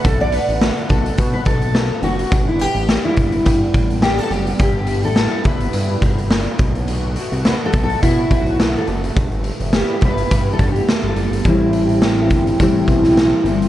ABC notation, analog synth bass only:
X:1
M:4/4
L:1/16
Q:"Swing 16ths" 1/4=105
K:G
V:1 name="Analog synth bass" clef=bass
B,,,3 A,,,2 z B,,,2 B,,2 B,,,4 F,,,2 | G,,,3 A,,,2 z G,,,2 G,,2 A,,,4 F,,,2 | G,,,3 A,,,2 z G,,,2 G,,2 G,,,4 B,,,2- | B,,,3 C,,2 z B,,,2 B,,2 B,,,4 F,,,2 |
G,,,3 F,,,2 z G,,,2 G,,2 G,,2 z G,,, F,,, G,,, | A,,,6 G,,,2 A,,,2 B,,,4 G,,,2 |]